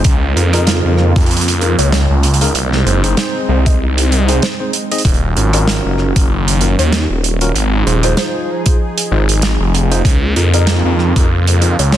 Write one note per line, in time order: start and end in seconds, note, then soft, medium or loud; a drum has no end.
0.04 0.34 C#2 loud
0.04 2.53 C#3 medium
0.04 2.53 A#3 medium
0.04 2.53 F4 medium
0.04 kick loud
0.04 closed hi-hat medium
0.36 0.82 F2 medium
0.36 0.49 D#4 medium
0.36 0.49 F4 medium
0.36 0.49 G#4 medium
0.36 0.49 A#4 medium
0.36 closed hi-hat soft
0.53 1.12 D#4 medium
0.53 1.12 F4 medium
0.53 1.12 G#4 medium
0.53 1.12 A#4 loud
0.53 0.80 D#5 medium
0.53 cross-stick medium
0.53 closed hi-hat medium
0.67 snare loud
0.67 closed hi-hat medium
0.85 1.13 F2 medium
0.98 cross-stick soft
1.16 1.76 F2 loud
1.16 1.26 D#4 medium
1.16 1.26 F4 medium
1.16 1.26 G#4 medium
1.16 1.26 A#4 medium
1.16 kick loud
1.16 closed hi-hat soft
1.20 closed hi-hat soft
1.26 closed hi-hat soft
1.31 closed hi-hat soft
1.37 closed hi-hat medium
1.41 closed hi-hat medium
1.48 closed hi-hat medium
1.61 1.74 D#4 medium
1.61 1.74 F4 medium
1.61 1.74 G#4 medium
1.61 1.74 A#4 medium
1.61 closed hi-hat medium
1.78 2.07 C#2 medium
1.78 1.87 C#5 medium
1.78 closed hi-hat medium
1.92 2.04 C#5 medium
1.92 snare loud
1.92 closed hi-hat medium
2.10 2.53 C#2 medium
2.23 closed hi-hat medium
2.34 closed hi-hat medium
2.41 2.51 D#4 medium
2.41 2.51 F4 medium
2.41 2.51 G#4 medium
2.41 2.51 A#4 loud
2.41 closed hi-hat medium
2.44 closed hi-hat soft
2.55 2.84 C2 loud
2.55 5.03 G#3 medium
2.55 5.03 C4 medium
2.55 5.03 D#4 medium
2.55 closed hi-hat medium
2.73 snare soft
2.86 3.15 F#1 medium
2.86 2.99 C4 medium
2.86 2.99 D#4 medium
2.86 2.99 G#4 medium
2.86 2.99 C5 medium
2.86 closed hi-hat medium
3.04 3.62 C4 medium
3.04 3.62 D#4 medium
3.04 3.62 G#4 medium
3.04 3.62 C5 loud
3.04 cross-stick medium
3.04 closed hi-hat medium
3.17 snare loud
3.17 closed hi-hat medium
3.49 4.40 C2 medium
3.66 3.76 C4 medium
3.66 3.76 D#4 medium
3.66 3.76 G#4 medium
3.66 3.76 C5 medium
3.66 4.25 D#5 medium
3.66 kick loud
3.66 closed hi-hat medium
3.98 closed hi-hat medium
4.12 closed hi-hat medium
4.28 4.45 C4 medium
4.28 4.45 D#4 medium
4.28 4.45 G#4 medium
4.28 4.37 C5 medium
4.28 4.45 C5 loud
4.28 closed hi-hat medium
4.42 4.54 C5 medium
4.42 snare loud
4.42 closed hi-hat medium
4.60 4.70 C4 medium
4.60 4.70 D#4 medium
4.60 4.70 G#4 medium
4.60 4.70 C5 medium
4.73 closed hi-hat medium
4.91 5.01 C4 medium
4.91 5.01 D#4 medium
4.91 5.01 G#4 medium
4.91 5.01 D#5 medium
4.91 closed hi-hat medium
4.98 closed hi-hat medium
5.05 5.34 D#1 loud
5.05 7.52 D#3 medium
5.05 7.52 F#3 medium
5.05 7.53 C#4 medium
5.05 kick loud
5.05 closed hi-hat medium
5.14 closed hi-hat soft
5.36 5.82 G#1 medium
5.36 5.49 C#4 medium
5.36 5.49 F4 medium
5.36 5.49 F#4 medium
5.36 5.49 A#4 medium
5.36 closed hi-hat medium
5.53 6.12 C#4 medium
5.53 6.12 F4 medium
5.53 6.12 F#4 medium
5.53 6.12 A#4 loud
5.53 5.80 D#5 medium
5.53 cross-stick medium
5.53 closed hi-hat medium
5.68 snare loud
5.68 closed hi-hat medium
5.85 6.13 F#1 medium
5.98 cross-stick soft
6.16 6.76 F#1 loud
6.16 6.26 C#4 medium
6.16 6.26 F4 medium
6.16 6.26 F#4 medium
6.16 6.26 A#4 medium
6.16 kick loud
6.16 closed hi-hat medium
6.48 closed hi-hat medium
6.61 6.74 C#4 medium
6.61 6.74 F4 medium
6.61 6.74 F#4 medium
6.61 6.74 A#4 medium
6.61 closed hi-hat medium
6.79 7.07 D#2 loud
6.79 7.05 C#5 medium
6.79 closed hi-hat medium
6.93 snare loud
6.93 closed hi-hat medium
7.10 7.53 D#1 medium
7.24 closed hi-hat medium
7.41 7.51 C#4 medium
7.41 7.51 F4 medium
7.41 7.51 F#4 medium
7.41 7.51 A#4 loud
7.41 closed hi-hat medium
7.54 7.84 G#1 loud
7.54 10.02 F3 medium
7.54 10.02 D#4 medium
7.54 10.02 G#4 medium
7.54 closed hi-hat medium
7.86 8.15 D#1 medium
7.86 7.99 D#4 medium
7.86 7.99 F4 medium
7.86 7.99 G#4 medium
7.86 7.99 C5 medium
7.86 closed hi-hat medium
8.03 8.62 D#4 loud
8.03 8.62 F4 medium
8.03 8.62 G#4 medium
8.03 8.62 C5 loud
8.03 8.13 C5 medium
8.03 cross-stick medium
8.03 closed hi-hat medium
8.17 8.29 C5 medium
8.17 snare loud
8.17 closed hi-hat medium
8.66 8.76 D#4 medium
8.66 8.76 F4 medium
8.66 8.76 G#4 medium
8.66 8.76 C5 medium
8.66 kick loud
8.66 closed hi-hat medium
8.98 closed hi-hat medium
9.11 9.57 G#1 medium
9.11 9.24 D#4 medium
9.11 9.24 F4 medium
9.11 9.24 G#4 medium
9.11 9.24 C5 medium
9.29 closed hi-hat medium
9.42 snare loud
9.42 closed hi-hat medium
9.60 10.03 F1 medium
9.75 closed hi-hat medium
9.92 10.01 D#4 medium
9.92 10.01 F4 medium
9.92 10.01 G#4 medium
9.92 10.01 C5 loud
9.92 closed hi-hat medium
10.05 10.34 C#2 loud
10.05 11.97 C#3 medium
10.05 11.97 A#3 medium
10.05 11.97 F4 medium
10.05 kick loud
10.05 closed hi-hat medium
10.36 10.82 F2 medium
10.36 10.49 D#4 medium
10.36 10.49 F4 medium
10.36 10.49 G#4 medium
10.36 10.49 A#4 medium
10.36 closed hi-hat medium
10.54 11.12 D#4 loud
10.54 11.12 F4 medium
10.54 11.12 G#4 medium
10.54 11.12 A#4 loud
10.54 10.80 D#5 medium
10.54 closed hi-hat medium
10.67 snare loud
10.67 closed hi-hat medium
10.85 11.13 F2 medium
10.99 cross-stick soft
11.16 11.76 F2 loud
11.16 11.26 D#4 medium
11.16 11.26 F4 medium
11.16 11.26 G#4 medium
11.16 11.26 A#4 medium
11.16 kick loud
11.16 closed hi-hat medium
11.47 closed hi-hat medium
11.61 11.74 D#4 medium
11.61 11.74 F4 medium
11.61 11.74 G#4 medium
11.61 11.74 A#4 medium
11.61 closed hi-hat medium
11.79 11.97 C#2 loud
11.79 11.88 C#5 medium
11.79 closed hi-hat medium
11.92 11.97 C#5 medium
11.92 snare loud
11.92 closed hi-hat medium